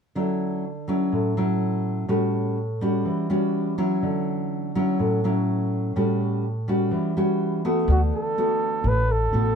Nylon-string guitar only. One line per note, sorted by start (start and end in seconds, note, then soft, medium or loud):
0.15 1.10 D3 medium
0.15 0.64 F#3 medium
0.15 0.64 C#4 soft
0.15 0.64 E4 soft
0.88 1.32 F#3 medium
0.88 1.33 C#4 medium
0.88 1.33 E4 medium
1.12 2.06 A2 medium
1.37 2.05 F#3 medium
1.37 2.06 C#4 medium
1.37 2.06 E4 medium
2.08 3.03 A2 medium
2.08 2.57 G3 soft
2.08 2.57 C#4 medium
2.08 2.57 F#4 medium
2.81 3.26 G3 medium
2.81 3.26 C#4 medium
2.81 3.26 F#4 medium
3.05 4.00 E3 medium
3.30 3.74 G3 medium
3.30 3.74 C#4 medium
3.30 3.75 F#4 medium
3.78 4.71 F#3 medium
3.78 4.71 C#4 medium
3.78 4.71 E4 medium
4.02 4.97 D3 medium
4.75 5.20 F#3 medium
4.75 5.20 C#4 medium
4.75 5.20 E4 medium
4.99 5.93 A2 medium
5.24 5.92 F#3 medium
5.24 5.92 C#4 medium
5.24 5.93 E4 medium
5.96 6.90 A2 medium
5.96 6.44 G3 medium
5.96 6.44 C#4 soft
5.96 6.44 F#4 medium
6.68 7.12 G3 medium
6.68 7.12 C#4 medium
6.68 7.13 F#4 medium
6.91 7.86 E3 medium
7.17 7.61 G3 medium
7.17 7.61 C#4 medium
7.17 7.61 F#4 medium
7.65 8.35 A3 medium
7.65 8.35 B3 medium
7.65 8.35 F#4 medium
7.89 8.83 D3 soft
8.38 9.02 A3 medium
8.38 9.02 B3 medium
8.38 9.03 F#4 medium
8.85 9.55 A2 soft
9.33 9.55 A3 soft
9.33 9.55 B3 medium
9.33 9.55 F#4 medium